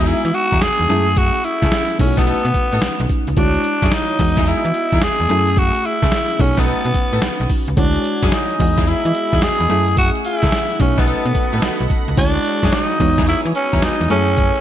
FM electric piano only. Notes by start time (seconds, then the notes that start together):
Already playing: G#3 B3 D#4 F#4
0.88 G#3 C#4 E4 G#4
0.94 A3
1.98 A3 C#4 D#4 E4
2.07 F#4
3.36 G#3 E4 F#4 C#5
4.18 G#3 B3 F#4 D#5
5.28 A3 C#4 E4 G#4
6.39 A3 C#4 D#4 F#4
7.76 G#3 E4 F#4 C#5
8.58 G#3 B3 F#4 D#5
9.69 A3 C#4 E4 G#4
10.79 A3 C#4 D#4 F#4
12.17 G#3 E4 F#4 C#5
12.99 G#3 B3 D#4 F#4
14.09 A3 C#4 E4 G#4